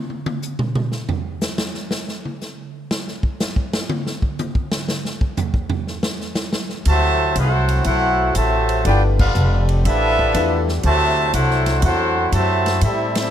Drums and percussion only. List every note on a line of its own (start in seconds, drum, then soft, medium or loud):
0.10 high tom soft
0.26 high tom loud
0.42 hi-hat pedal medium
0.59 mid tom loud
0.75 mid tom loud
0.92 snare medium
1.09 floor tom loud
1.41 snare loud
1.41 hi-hat pedal medium
1.58 snare loud
1.74 snare soft
1.91 snare loud
2.08 snare soft
2.25 high tom medium
2.41 snare soft
2.41 hi-hat pedal medium
2.91 snare loud
3.08 snare soft
3.23 kick medium
3.40 snare loud
3.40 hi-hat pedal medium
3.56 kick medium
3.73 snare loud
3.89 high tom loud
4.07 snare medium
4.22 kick medium
4.39 hi-hat pedal medium
4.39 high tom medium
4.55 kick medium
4.72 snare loud
4.88 snare loud
5.05 snare medium
5.21 kick medium
5.37 floor tom loud
5.37 hi-hat pedal medium
5.54 kick medium
5.70 floor tom loud
5.87 snare soft
6.03 snare loud
6.21 snare soft
6.35 snare medium
6.35 hi-hat pedal medium
6.53 snare loud
6.69 snare soft
6.85 kick soft
6.85 ride medium
7.36 kick soft
7.36 hi-hat pedal medium
7.36 ride medium
7.69 ride medium
7.84 kick soft
7.84 ride medium
8.35 kick soft
8.35 hi-hat pedal medium
8.35 ride medium
8.69 ride medium
8.85 kick soft
8.85 ride medium
9.19 kick loud
9.19 crash medium
9.35 hi-hat pedal medium
9.69 ride medium
9.85 kick soft
9.85 ride medium
10.19 kick medium
10.34 kick soft
10.34 hi-hat pedal medium
10.34 ride medium
10.68 snare soft
10.83 kick soft
10.83 ride medium
11.34 kick soft
11.34 hi-hat pedal medium
11.34 ride medium
11.51 snare soft
11.66 snare medium
11.66 ride medium
11.82 kick soft
11.82 ride medium
12.32 kick soft
12.32 hi-hat pedal medium
12.32 ride medium
12.66 snare medium
12.66 ride medium
12.81 kick soft
12.81 ride medium
13.15 snare loud
13.15 ride medium